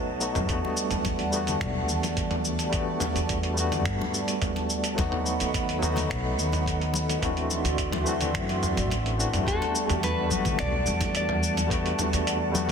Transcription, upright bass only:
0.00 0.27 B1 medium
0.36 0.44 F#2 medium
0.49 0.58 E2 medium
0.92 1.54 E2 medium
1.61 1.89 B1 medium
1.89 2.94 E2 medium
3.16 3.86 E2 medium
3.86 3.95 G2 medium
4.98 5.07 D#2 loud
5.41 6.03 D#2 medium
6.10 6.38 B1 medium
6.38 7.14 D#2 loud
7.65 8.34 D2 medium
8.34 8.78 F#2 loud
8.77 9.25 A1 loud
9.33 9.42 F#2 medium
9.47 9.56 E2 medium
9.90 10.51 E2 medium
10.60 10.89 B1 medium
10.87 11.91 E2 loud
12.13 12.72 E2 medium

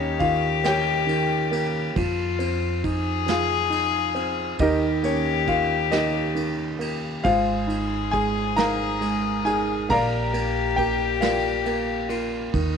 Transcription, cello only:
0.00 1.98 G4 loud
1.96 2.86 F4 loud
2.85 4.61 G#4 loud
4.59 6.80 G4 loud
6.81 7.26 G4 medium
7.25 9.91 G#4 loud
9.90 12.11 G4 loud
12.09 12.54 F4 medium
12.55 12.77 D#4 loud

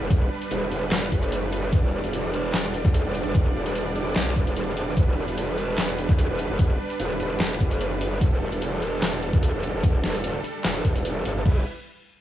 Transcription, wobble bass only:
0.01 0.29 E1 loud
0.51 1.10 E1 loud
1.12 1.71 F#1 loud
1.73 2.02 E1 loud
2.04 2.83 E1 loud
2.85 3.03 D2 loud
3.05 3.24 E1 loud
3.25 3.53 E1 loud
3.55 4.14 E1 loud
4.16 4.35 B1 loud
4.36 4.95 E1 medium
4.97 5.26 E1 loud
5.28 6.07 E1 loud
6.09 6.28 D2 loud
6.29 6.48 E1 loud
6.49 6.78 E1 loud
7.00 7.59 E1 loud
7.60 8.20 F#1 loud
8.21 8.51 E1 loud
8.52 9.32 E1 loud
9.33 9.52 D2 loud
9.54 9.72 E1 loud
9.74 10.02 E1 loud
10.04 10.43 E1 loud
10.65 11.24 E1 loud
11.25 11.44 G1 loud
11.46 11.64 E1 loud

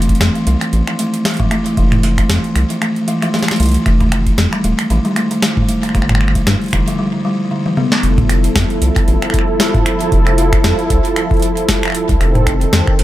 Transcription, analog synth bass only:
0.00 0.14 F1 loud
0.21 0.30 F2 medium
0.47 0.56 C2 medium
0.73 0.82 A1 loud
1.77 2.23 F1 loud
2.29 2.39 F2 medium
2.56 2.65 C2 medium
3.60 3.77 C2 medium
3.86 4.31 F1 loud
4.38 4.47 F2 medium
4.64 4.73 D#1 medium
4.90 4.99 A1 loud
5.95 6.40 G1 loud
6.47 6.56 G2 medium
6.73 6.82 F1 medium
8.03 8.49 F1 loud
8.56 8.65 F2 medium
8.82 8.91 C2 medium
9.08 9.17 A1 loud
10.12 10.57 F1 loud
10.64 10.73 F2 medium
10.90 10.99 C2 medium
12.09 12.16 C2 medium
12.21 12.66 F1 loud
12.73 12.82 F2 medium
12.99 13.04 D#1 medium

